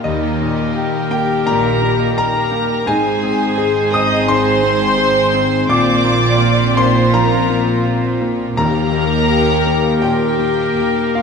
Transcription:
Already playing: A#3 D#4 A#4 D#5 G5 A#5
0.04 D#2 D#3 G3 A#3 D#4 G4 A#4 D#5
0.21 A#3 D#4
0.38 A#2 G3 A#4
0.58 A#3 D#5
0.75 G3 G4 G5
0.93 A#3 A#5
1.09 A#3 G4 G5
1.14 G3
1.28 A#3 A#4
1.45 A#1 A#2 G3 A#4 A#5
1.62 A#3 D#4
1.81 G3 A#3
1.98 A#3 D#5
2.15 G3 G4 A#4 G5 A#5
2.33 A#3
2.50 G3 A#3 G5
2.69 A#3 A#4
2.85 G#1 G#2 C4 D#4 G#4 C5 G#5
3.05 C4
3.23 C4 G#4
3.39 C5
3.57 G#4 D#5
3.75 G#5
3.92 C4 D#5 D#6
4.11 G#4
4.28 D#3 C5 C6
4.46 C4
4.63 C4 G#4
4.98 G#4 D#5
5.15 G#5
5.33 C4 D#5
5.51 G#4
5.69 A#1 A#2 F4 D5 D6
5.86 A#3
6.04 A#3 F4
6.22 A#4
6.40 F4
6.77 A#3 C5 C6
6.96 F4
7.13 F3 A#4 A#5
7.32 A#3
7.49 A#3 F4
7.67 A#4
7.86 F4 C5
8.04 F5
8.21 A#3 C5
8.39 F4
8.56 D#2 D#3 A#3 G4 A#4 A#5
8.76 D#4
8.92 A#3 A#4
9.13 D#5
9.29 G4 G5
9.49 A#5
9.66 A#3 G5
10.02 A#2 A#3 G4 G5
10.21 D#4
10.39 A#3
10.76 D#2 G4 G5
10.95 A#5
11.15 A#3 F4 F5 G5

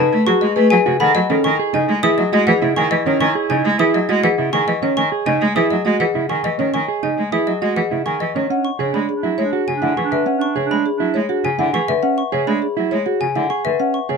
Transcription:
Already playing: D#4 B4 A5
0.12 A3
0.27 F#3 F#4 G#4 C#6
0.41 G#3 D#5
0.56 A3 G#4 B4
0.70 F#3 G#4 G#5
0.86 C#3 F#4
1.00 D#3 A4 F#5 B5
1.15 F#3 D#5
1.30 D#3 C#4 A4
1.44 D#3 E4 G#5 C#6
1.59 G#4
1.74 C#3 D#4 D#5 G#5
1.88 G#3
2.03 E3 E4 G#4 D#6
2.18 F#3 D#5
2.32 G#3 F#4 D#5
2.47 E3 G#4 F#5
2.62 C#3 E4
2.76 D#3 G#4 G#5 C#6
2.91 E3 D#5
3.06 D#3 C#4 C#5
3.21 D#3 G#5 C#6
3.35 G#4
3.50 C#3 D#4 D#5 G#5
3.65 G#3
3.79 E3 E4 G#4 D#6
3.94 F#3 D#5
4.09 G#3 F#4 D#5
4.24 E3 G#4 F#5
4.38 C#3 E4
4.53 D#3 G#4 G#5 C#6
4.68 E3 D#5
4.82 D#3 C#4 C#5
4.97 D#3 G#5 C#6
5.12 G#4
5.26 C#3 D#4 D#5 G#5
5.41 G#3
5.55 E3 E4 G#4 D#6
5.71 F#3 D#5
5.85 G#3 F#4 D#5
6.00 E3 G#4 F#5
6.15 C#3 E4
6.29 D#3 G#4 G#5 C#6
6.44 E3 D#5
6.59 D#3 C#4 C#5
6.74 D#3 G#5 C#6
6.88 G#4
7.03 C#3 D#4 D#5 G#5
7.17 G#3
7.32 E3 E4 G#4 D#6
7.47 F#3 D#5
7.62 G#3 F#4 D#5
7.76 E3 G#4 F#5
7.91 C#3 E4
8.06 D#3 G#4 G#5 C#6
8.20 E3 D#5
8.35 D#3 C#4 C#5
8.50 C#4 D4 F#5
8.65 C#6
8.79 C#3 D4 G#4 C#5
8.94 G#3 D4 B5
9.09 D4 G#4
9.23 F#3 E4
9.38 G#3 C#5
9.42 D4
9.53 F#4 G#4
9.68 C#3 G#5
9.73 D4
9.82 D3 E4 F#5
9.97 E3 G#4 C#6
10.04 D4
10.11 D3 B4 E5
10.26 C#4 F#5
10.35 D4
10.41 C#6
10.56 C#3 G#4 C#5
10.66 D4
10.71 G#3 D4 B5
10.86 G#4
10.96 F#3 D4 E4
11.14 G#3 C#5
11.27 D4 F#4 G#4
11.44 C#3 G#5
11.58 D3 D4 E4 F#5
11.74 E3 G#4 C#6
11.88 D3 B4 E5
12.03 C#4 F#5
12.18 C#6
12.32 C#3 G#4 C#5
12.47 G#3 D4 B5
12.62 G#4
12.77 F#3 E4
12.91 G#3 C#5
13.06 F#4 G#4
13.21 C#3 G#5
13.36 D3 E4 F#5
13.50 G#4 C#6
13.65 D3 B4 E5
13.80 C#4 F#5
13.94 C#6
14.09 C#3 G#4 C#5

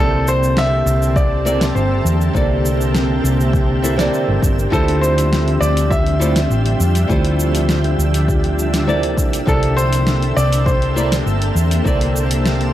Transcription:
Already playing: C2 C3 D3 A#3 C4 E4 G4 A4 E5 G5
0.00 A4 D5
0.28 C5, cabasa
0.43 cabasa
0.57 E5, snare, cabasa
0.86 C2, cabasa
1.02 cabasa
1.16 D5, kick, cabasa
1.45 C3 A#3 E4 A4 D5, cabasa
1.61 snare, cabasa
1.75 G1 C5, cabasa
2.05 E2, cabasa
2.21 cabasa
2.33 C2 C3 A#3 E4 A4 D5, kick, cabasa
2.66 cabasa
2.81 cabasa
2.95 snare, cabasa
3.24 C2, cabasa
3.40 cabasa
3.53 kick, cabasa
3.82 C3 A#3 E4 A4 E5, cabasa
3.97 C3 A#3 E4 A4 D5, snare, cabasa
4.14 cabasa
4.28 G1
4.42 G1, kick, cabasa
4.59 cabasa
4.70 D2 D3 F3 G3 A3 E4 F4 A4 C5, kick, cabasa
4.88 open hi-hat
5.01 C5, cabasa
5.18 open hi-hat, cabasa
5.33 snare, cabasa
5.48 open hi-hat
5.61 D2 D5, cabasa
5.77 open hi-hat, cabasa
5.90 E5, kick, cabasa
6.06 open hi-hat
6.19 D3 A3 E4 F4 G4 C5, cabasa
6.36 snare, open hi-hat, cabasa
6.50 A1, cabasa
6.66 open hi-hat
6.80 F2, cabasa
6.95 open hi-hat, cabasa
7.08 D2 D3 A3 D4 E4 F4 G4 C5, kick, cabasa
7.25 open hi-hat
7.40 cabasa
7.55 open hi-hat, cabasa
7.69 snare, cabasa
7.84 open hi-hat
7.98 D2, cabasa
8.14 open hi-hat, cabasa
8.28 kick, cabasa
8.44 open hi-hat
8.59 cabasa
8.74 snare, open hi-hat, cabasa
8.87 C3 A#3 E4 A4 D5, cabasa
9.03 open hi-hat
9.17 C2 A#3 C4 A4, kick, cabasa
9.33 open hi-hat, cabasa
9.46 C2 C3 A#3 E4 A4 D5, kick, cabasa
9.63 open hi-hat
9.77 C5, cabasa
9.93 open hi-hat, cabasa
10.07 snare, cabasa
10.22 open hi-hat
10.37 C2 D5, cabasa
10.53 open hi-hat, cabasa
10.66 C5, kick, cabasa
10.82 open hi-hat
10.95 C3 A#3 E4 A4 D5, cabasa
11.12 snare, open hi-hat, cabasa
11.26 G1, cabasa
11.42 open hi-hat
11.55 E2, cabasa
11.71 open hi-hat, cabasa
11.84 C2 C3 A#3 E4 A4 D5, kick, cabasa
12.01 open hi-hat
12.16 cabasa
12.31 open hi-hat, cabasa
12.46 snare, cabasa
12.61 open hi-hat

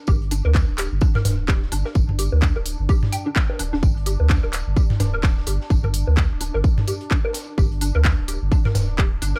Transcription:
Already playing: D4
0.07 G1 G4, kick, tambourine
0.22 closed hi-hat
0.31 D4, open hi-hat, tambourine
0.45 D2 A#4, low bongo
0.55 kick, snare, clap, tambourine
0.68 D1
0.78 G4, clap, open hi-hat, tambourine
0.92 G1
1.01 D4, kick, tambourine
1.15 A#4, snare, mid tom
1.25 D1, snare, mid tom, open hi-hat, tambourine, low bongo
1.48 G4, kick, snare, clap, tambourine
1.62 snare
1.72 G1 D4, open hi-hat, tambourine
1.85 A#4, snare
1.95 G1, kick, tambourine
2.09 mid tom
2.19 G4, open hi-hat, tambourine
2.32 D2, low bongo
2.42 D4, kick, snare, clap, tambourine
2.56 D1 A#4
2.66 open hi-hat, tambourine
2.79 G1
2.89 G4, kick, tambourine
3.03 snare, mid tom
3.12 G5, open hi-hat, tambourine
3.26 D4
3.35 kick, snare, clap, tambourine
3.50 low bongo
3.59 D1 D4, open hi-hat, tambourine
3.73 D1 D4, snare
3.83 G1, kick, tambourine
3.97 closed hi-hat
4.06 G4, open hi-hat, tambourine
4.20 D2, low bongo
4.30 D4, kick, snare, clap, tambourine
4.43 D1 A#4
4.53 clap, open hi-hat, tambourine
4.67 G1
4.77 G4, kick, tambourine
4.90 snare, mid tom
5.00 D1 D4, snare, mid tom, open hi-hat, tambourine, low bongo
5.14 A#4
5.23 kick, snare, clap, tambourine
5.37 snare
5.47 G1 G4, open hi-hat, tambourine
5.61 snare
5.70 G1 D4, kick, tambourine
5.84 A#4, mid tom
5.94 open hi-hat, tambourine
6.07 D2, low bongo
6.17 G4, kick, snare, clap, tambourine
6.31 D1
6.40 D4, open hi-hat, tambourine
6.54 G1 A#4
6.64 kick, tambourine
6.77 snare, mid tom
6.88 G4, open hi-hat, tambourine
7.01 closed hi-hat
7.11 D4, kick, clap, tambourine
7.25 A#4, low bongo
7.33 snare, open hi-hat, tambourine
7.58 G1 G4, kick, tambourine
7.72 closed hi-hat
7.81 D4, open hi-hat, tambourine
7.95 D2 A#4, low bongo
8.04 kick, snare, clap, tambourine
8.18 D1
8.28 G4, open hi-hat, tambourine
8.42 G1
8.52 D4, kick, tambourine
8.65 A#4, snare, mid tom
8.75 D1, snare, mid tom, open hi-hat, tambourine, low bongo
8.98 G4, kick, clap, tambourine
9.22 G1 D4, open hi-hat, tambourine
9.36 A#4, snare

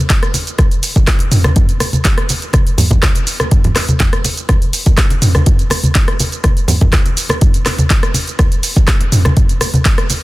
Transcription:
0.10 kick, clap, closed hi-hat, muted conga, shaker
0.23 cross-stick, closed hi-hat, shaker
0.34 open hi-hat, muted conga, shaker
0.47 closed hi-hat, shaker
0.58 kick, cross-stick, closed hi-hat, muted conga, high conga, shaker
0.71 closed hi-hat, shaker
0.83 open hi-hat, shaker
0.96 kick, closed hi-hat, muted conga, shaker
1.07 kick, cross-stick, clap, closed hi-hat, shaker
1.19 closed hi-hat, muted conga, shaker
1.32 mid tom, open hi-hat, shaker
1.44 cross-stick, muted conga, high conga, shaker
1.56 kick, closed hi-hat, mid tom, shaker
1.69 closed hi-hat, shaker
1.80 cross-stick, open hi-hat, muted conga, shaker
1.93 closed hi-hat, high conga, shaker
2.04 kick, clap, closed hi-hat, muted conga, shaker
2.18 cross-stick, closed hi-hat, shaker
2.29 open hi-hat, muted conga, shaker
2.42 closed hi-hat, shaker
2.53 kick, cross-stick, closed hi-hat, muted conga, high conga, shaker
2.67 closed hi-hat, shaker
2.78 open hi-hat, low conga, shaker
2.91 kick, closed hi-hat, muted conga, low conga, shaker
3.03 kick, cross-stick, clap, closed hi-hat, high conga, shaker
3.15 closed hi-hat, muted conga, shaker
3.27 open hi-hat, shaker
3.40 cross-stick, muted conga, shaker
3.51 kick, closed hi-hat, mid tom, shaker
3.64 closed hi-hat, low conga, shaker
3.75 cross-stick, clap, open hi-hat, muted conga, shaker
3.89 closed hi-hat, high conga, shaker
4.00 kick, clap, closed hi-hat, muted conga, low conga, shaker
4.13 cross-stick, closed hi-hat, shaker
4.25 open hi-hat, muted conga, shaker
4.37 closed hi-hat, shaker
4.49 kick, cross-stick, closed hi-hat, muted conga, high conga, shaker
4.62 closed hi-hat, shaker
4.73 open hi-hat, shaker
4.86 kick, closed hi-hat, muted conga, high conga, shaker
4.98 kick, cross-stick, clap, closed hi-hat, shaker
5.10 closed hi-hat, muted conga, shaker
5.22 mid tom, open hi-hat, shaker
5.35 cross-stick, muted conga, high conga, shaker
5.46 kick, closed hi-hat, mid tom, shaker
5.59 closed hi-hat, shaker
5.70 cross-stick, open hi-hat, muted conga, shaker
5.83 closed hi-hat, high conga, shaker
5.95 kick, clap, closed hi-hat, muted conga, shaker
6.08 cross-stick, closed hi-hat, shaker
6.20 open hi-hat, muted conga, shaker
6.32 closed hi-hat, shaker
6.44 kick, cross-stick, closed hi-hat, muted conga, high conga, shaker
6.57 closed hi-hat, shaker
6.68 open hi-hat, low conga, shaker
6.81 kick, closed hi-hat, muted conga, low conga, shaker
6.93 kick, cross-stick, clap, closed hi-hat, high conga, shaker
7.06 closed hi-hat, muted conga, shaker
7.17 open hi-hat, shaker
7.29 cross-stick, muted conga, shaker
7.41 kick, closed hi-hat, mid tom, shaker
7.54 closed hi-hat, shaker
7.66 cross-stick, clap, open hi-hat, muted conga, shaker
7.78 closed hi-hat, high conga, shaker
7.90 kick, clap, closed hi-hat, muted conga, shaker
8.03 cross-stick, closed hi-hat, shaker
8.14 open hi-hat, muted conga, shaker
8.27 closed hi-hat, shaker
8.39 kick, cross-stick, closed hi-hat, muted conga, high conga, shaker
8.52 closed hi-hat, shaker
8.63 open hi-hat, shaker
8.76 kick, closed hi-hat, muted conga, shaker
8.88 kick, cross-stick, clap, closed hi-hat, shaker
9.01 closed hi-hat, muted conga, shaker
9.12 mid tom, open hi-hat, shaker
9.25 cross-stick, closed hi-hat, muted conga, high conga, shaker
9.37 kick, closed hi-hat, mid tom, shaker
9.49 closed hi-hat, shaker
9.61 cross-stick, open hi-hat, muted conga, shaker
9.74 closed hi-hat, high conga, shaker
9.85 kick, clap, closed hi-hat, muted conga, shaker
9.98 cross-stick, closed hi-hat, shaker
10.10 open hi-hat, muted conga, shaker

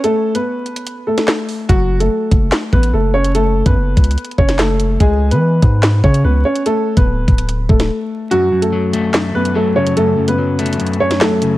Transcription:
0.04 A3 A4, closed hi-hat
0.35 B3 B4, closed hi-hat
0.66 closed hi-hat
0.76 closed hi-hat
0.87 closed hi-hat
1.07 A3 A4
1.18 snare, closed hi-hat
1.28 snare, clap
1.49 open hi-hat
1.69 F#1 F#3 F#4, kick, closed hi-hat
2.00 A3 A4, closed hi-hat
2.31 F#1, kick, closed hi-hat
2.52 snare, clap, closed hi-hat
2.73 A1 B3 B4, kick
2.83 closed hi-hat
2.93 F#1 A3 A4
3.14 C#4 C#5
3.25 closed hi-hat
3.35 A3 A4, closed hi-hat
3.66 F#2 B3 B4, kick, closed hi-hat
3.76 F#1
3.97 C#2, kick, closed hi-hat
4.04 closed hi-hat
4.11 closed hi-hat
4.18 closed hi-hat
4.24 closed hi-hat
4.31 closed hi-hat
4.38 F#1 C#4 C#5, kick
4.49 snare, closed hi-hat
4.59 A3 A4, snare, clap
4.80 closed hi-hat
5.00 C#2 G#3 G#4, kick, closed hi-hat
5.31 E3 B3 B4, closed hi-hat
5.62 G#2, kick, closed hi-hat
5.83 snare, clap, closed hi-hat
6.04 C#3 C#4 C#5, kick
6.14 closed hi-hat
6.24 C#2 B3 B4
6.45 C#4 C#5
6.56 closed hi-hat
6.66 A3 A4, closed hi-hat
6.97 D1 B3 B4, kick, closed hi-hat
7.07 D1
7.28 D1, kick, closed hi-hat
7.38 closed hi-hat
7.49 closed hi-hat
7.69 D1 A3 A4, kick
7.80 snare, closed hi-hat
8.31 F#2 F#3 F#4, closed hi-hat
8.52 F#2
8.62 A3 A4, closed hi-hat
8.73 F#3
8.93 A3, closed hi-hat
9.14 F#2, snare, clap, closed hi-hat
9.34 F#2 B3 B4
9.45 closed hi-hat
9.55 F#3 A3 A4
9.76 C#3 C#4 C#5
9.87 closed hi-hat
9.97 F#2 A3 A4, closed hi-hat
10.18 F#2
10.28 B3 B4, closed hi-hat
10.38 F#3
10.59 A3, closed hi-hat
10.66 closed hi-hat
10.73 closed hi-hat
10.80 F#2, closed hi-hat
10.87 closed hi-hat
10.93 closed hi-hat
11.00 F#2 C#4 C#5
11.11 snare, closed hi-hat
11.21 F#3 A3 A4, snare, clap
11.42 C#3, closed hi-hat

